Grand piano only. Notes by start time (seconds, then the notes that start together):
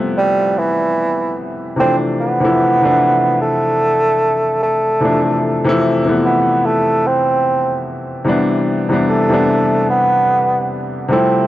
Already playing: C3 F3 G3 A3 B3 E4
1.76 C3 E3 F3 A3
1.81 D4
2.40 C3 E3 F3 A3
2.45 E4
2.81 C3 E3 F3 A3
2.85 D4
5.00 C3 E3 F3 A3
5.05 D4
5.64 C3 E3 F3 A3
5.69 E4
6.05 C3 E3 F3 A3
6.09 B3
8.24 C3 E3 G3 B3
8.29 D4
8.89 C3 E3 G3 B3
8.93 D4
9.29 C3 E3 G3 B3
9.34 D4
11.08 C3 F3 G3 A3
11.13 E4